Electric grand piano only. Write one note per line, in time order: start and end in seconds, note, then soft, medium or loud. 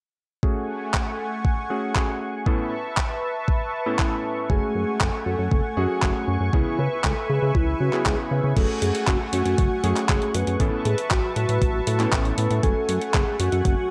0.43 1.67 A3 medium
0.43 1.67 C#4 medium
0.43 1.67 F#4 medium
0.43 1.67 G#4 medium
1.70 1.92 A3 medium
1.70 1.92 C#4 medium
1.70 1.92 F#4 medium
1.70 1.92 G#4 medium
1.95 2.43 A3 medium
1.95 2.43 C#4 medium
1.95 2.43 F#4 medium
1.95 2.43 G#4 medium
2.46 2.72 A2 medium
2.46 2.72 B3 medium
2.46 2.72 C#4 medium
2.46 2.72 E4 medium
2.46 2.72 A4 medium
3.86 3.97 A2 medium
3.86 3.97 B3 medium
3.86 3.97 C#4 medium
3.86 3.97 E4 medium
3.86 3.97 A4 loud
3.99 4.47 A2 medium
3.99 4.47 B3 medium
3.99 4.47 C#4 medium
3.99 4.47 E4 medium
3.99 4.47 A4 medium
4.50 5.74 A3 medium
4.50 5.74 C#4 medium
4.50 5.74 F#4 medium
4.50 5.74 G#5 medium
5.77 5.99 A3 medium
5.77 5.99 C#4 medium
5.77 5.99 F#4 medium
5.77 5.99 G#4 loud
6.02 6.50 A3 medium
6.02 6.50 C#4 medium
6.02 6.50 F#4 medium
6.02 6.50 G#4 medium
6.53 6.79 C#3 medium
6.53 6.79 B3 medium
6.53 6.79 C#4 medium
6.53 6.79 E4 medium
6.53 6.79 G#4 medium
7.93 8.04 C#3 medium
7.93 8.04 B3 medium
7.93 8.04 C#4 medium
7.93 8.04 E4 medium
7.93 8.04 G#4 medium
8.06 8.54 C#3 medium
8.06 8.54 B3 medium
8.06 8.54 C#4 medium
8.06 8.54 E4 medium
8.06 8.54 G#4 medium
8.57 9.81 A3 medium
8.57 9.81 C#4 medium
8.57 9.81 F#4 medium
8.57 9.81 G#4 medium
9.84 10.06 A3 medium
9.84 10.06 C#4 medium
9.84 10.06 F#4 medium
9.84 10.06 G#4 loud
10.09 10.57 A3 medium
10.09 10.57 C#4 medium
10.09 10.57 F#4 medium
10.09 10.57 G#4 medium
10.60 10.86 A2 medium
10.60 10.86 B3 medium
10.60 10.86 C#4 medium
10.60 10.86 E4 medium
10.60 10.86 A4 medium
12.00 12.11 A2 medium
12.00 12.11 B3 medium
12.00 12.11 C#4 medium
12.00 12.11 E4 medium
12.00 12.11 A4 loud
12.12 12.60 A2 medium
12.12 12.60 B3 medium
12.12 12.60 C#4 medium
12.12 12.60 E4 medium
12.12 12.60 A4 medium
12.63 13.87 A3 medium
12.63 13.87 C#4 medium
12.63 13.87 F#4 medium
12.63 13.87 G#5 medium